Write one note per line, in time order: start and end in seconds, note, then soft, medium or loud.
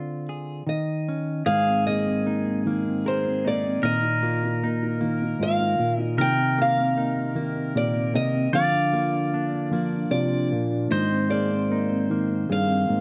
0.00 0.62 D3 medium
0.00 0.62 C4 soft
0.00 0.62 F4 soft
0.00 0.64 D5 medium
0.29 0.63 G#4 soft
0.67 1.42 D#3 medium
0.67 1.46 D#5 medium
1.08 1.43 C#4 soft
1.46 3.80 G#2 medium
1.46 2.64 D#3 medium
1.46 3.80 G#4 medium
1.46 1.86 F5 loud
1.67 2.04 C4 soft
1.86 2.67 A#3 medium
1.86 3.03 G#4 medium
1.86 2.62 D#5 medium
2.06 2.45 C4 medium
2.26 3.43 A#3 soft
2.26 3.44 D#4 medium
2.47 2.84 C4 soft
2.65 3.82 D#3 medium
2.65 4.22 A#3 medium
2.85 3.23 C4 medium
3.05 3.92 G#4 medium
3.05 5.43 A#4 medium
3.05 3.47 C5 medium
3.25 3.62 C4 medium
3.45 3.92 A#3 medium
3.45 4.63 D#4 medium
3.45 3.85 D5 medium
3.63 3.92 C4 medium
3.83 5.39 A#2 medium
3.83 5.00 D#3 medium
3.83 6.17 A#4 medium
3.83 5.38 D#5 medium
4.03 4.42 D#4 medium
4.23 5.01 A#3 medium
4.23 5.40 F4 medium
4.43 4.81 D#4 medium
4.63 5.78 A#3 medium
4.63 6.15 D#4 medium
4.83 5.20 D#4 medium
5.01 6.17 D#3 medium
5.01 6.58 A#3 medium
5.22 5.59 D#4 medium
5.40 5.79 G#2 medium
5.40 6.27 F4 medium
5.40 6.01 F5 medium
5.60 5.97 D#4 medium
5.79 6.19 A#2 medium
5.79 6.27 A#3 medium
5.98 6.27 D#4 medium
5.98 6.21 D#5 medium
6.17 8.13 C3 medium
6.17 7.34 D#3 medium
6.17 8.49 A#4 medium
6.17 6.61 G5 loud
6.38 6.76 C4 medium
6.58 7.36 A#3 medium
6.58 7.74 G4 medium
6.58 7.34 F5 medium
6.78 7.14 C4 medium
6.97 8.11 A#3 medium
6.97 8.49 D#4 medium
7.16 7.54 C4 medium
7.35 8.53 D#3 medium
7.35 8.93 A#3 medium
7.55 7.92 C4 soft
7.75 8.14 A#2 medium
7.75 8.61 G4 medium
7.75 8.13 D5 medium
7.94 8.32 C4 soft
8.13 8.52 C3 medium
8.13 8.61 A#3 medium
8.13 8.51 D#5 medium
8.34 8.61 C4 medium
8.53 10.10 D3 medium
8.53 9.70 F3 medium
8.53 10.48 D5 medium
8.53 10.17 F5 loud
8.72 9.11 D4 medium
8.93 9.72 A#3 medium
8.93 10.11 F4 medium
9.13 9.51 D4 medium
9.33 10.50 A#3 medium
9.33 10.92 D4 medium
9.53 9.91 D4 soft
9.71 10.91 F3 medium
9.71 11.31 A#3 medium
9.92 10.31 D4 medium
10.11 10.51 C3 medium
10.11 11.00 F4 medium
10.11 10.87 D5 medium
10.32 10.69 D4 medium
10.51 10.91 A#2 medium
10.51 10.99 A#3 medium
10.70 10.99 D4 medium
10.90 12.50 G#2 medium
10.90 12.08 D#3 medium
10.90 13.01 C5 medium
10.90 11.28 D#5 medium
11.10 11.49 C4 medium
11.30 12.11 A#3 medium
11.30 12.48 G#4 medium
11.30 12.06 D5 medium
11.51 11.88 C4 soft
11.70 12.86 A#3 medium
11.70 13.01 D#4 medium
11.89 12.27 C4 medium
12.10 13.01 D#3 medium
12.10 13.01 A#3 medium
12.29 12.66 C4 soft
12.49 12.89 G2 medium
12.49 13.01 G#4 medium
12.49 13.01 F5 medium
12.68 13.01 C4 medium
12.88 13.01 G#2 medium
12.88 13.01 A#3 medium